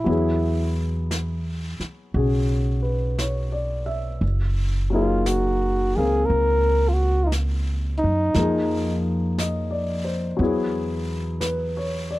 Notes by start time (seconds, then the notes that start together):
Already playing: E4 A#4
0.04 E2 F#3 B3 E4, brush sweep
0.10 G#4
1.11 brush sweep, snare, hi-hat pedal
1.80 muted upright bass stroke, snare
2.14 B1 C#3 F#4 G#4, brush sweep
2.83 B4
3.18 C#5, brush sweep, snare, hi-hat pedal
3.52 D5
3.86 E5
4.21 F#1, brush sweep
4.90 F#3 A#3 D#4 F4
4.95 G#4
5.26 F#4, brush sweep, snare, hi-hat pedal
5.96 C#2 C4 G#4 A#4 F5
6.25 A#4, brush sweep
6.30 C#2
6.89 F4
6.93 F#4
7.24 D#4 F4
7.32 brush sweep, snare, hi-hat pedal
7.98 D#4
8.04 F#2
8.34 F2 F3 A#3 D#4, brush sweep, snare
8.39 G#4
9.38 D#5, brush sweep, snare, hi-hat pedal
9.71 D5
10.04 C5
10.37 E2 F#3 B3, brush sweep
10.41 E4 G#4
11.41 B4, brush sweep, snare, hi-hat pedal
11.77 C#5
12.11 D5